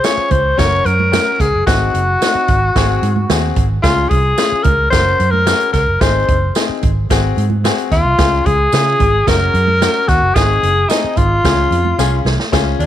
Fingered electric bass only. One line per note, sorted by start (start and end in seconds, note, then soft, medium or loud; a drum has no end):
0.17 muted fingered electric bass stroke soft
0.31 0.52 C#2 medium
0.58 0.80 F#1 loud
0.85 1.17 F#2 medium
1.40 1.50 C#2 medium
1.53 1.64 F#1 medium
1.67 1.88 G#1 loud
1.94 2.15 F#1 medium
2.35 muted fingered electric bass stroke soft
2.49 2.70 G#1 medium
2.76 2.97 G#1 medium
3.02 3.24 G#2 loud
3.30 3.51 D#2 medium
3.57 3.78 G#1 medium
3.84 4.05 C#2 medium
4.11 4.32 C2 medium
4.52 muted fingered electric bass stroke soft
4.65 4.87 C#2 medium
4.92 5.14 F#1 medium
5.20 5.52 F#2 medium
5.74 5.85 C#2 medium
5.87 5.98 F#1 medium
6.01 6.22 G#1 loud
6.29 6.50 F#1 medium
6.69 muted fingered electric bass stroke soft
6.83 7.04 G#1 medium
7.11 7.32 G#1 loud
7.37 7.69 G#2 medium
7.92 8.02 D#2 medium
8.05 8.15 C2 medium
8.19 8.40 C#2 medium
8.46 8.67 C#2 medium
8.73 8.94 C#3 loud
9.00 9.21 G#1 medium
9.27 9.49 F#1 medium
9.54 9.86 F#2 loud
10.08 10.19 D#2 medium
10.22 10.32 F#1 medium
10.36 10.57 G#1 loud
10.63 10.84 F#1 medium
11.04 muted fingered electric bass stroke soft
11.17 11.39 G#1 medium
11.45 11.66 C#2 loud
11.71 11.92 F2 medium
11.98 12.20 C2 medium
12.25 12.36 C2 medium
12.53 12.74 C#2 medium
12.79 12.86 D#2 medium